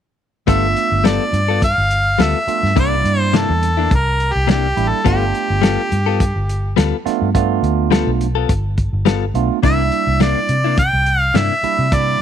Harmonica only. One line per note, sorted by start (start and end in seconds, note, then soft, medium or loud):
0.49 1.08 E5 medium
1.06 1.63 D5 medium
1.64 2.24 F5 loud
2.22 2.78 E5 medium
2.80 3.20 D5 medium
3.20 3.39 C5 medium
3.37 3.93 A4 medium
3.95 4.34 A#4 medium
4.32 4.50 G4 medium
4.51 4.90 G4 medium
4.88 5.06 A4 medium
5.07 6.74 G4 medium
9.65 10.18 E5 loud
10.22 10.74 D5 medium
10.79 11.20 G5 loud
11.20 11.38 F5 loud
11.36 11.96 E5 medium
11.94 12.22 D5 loud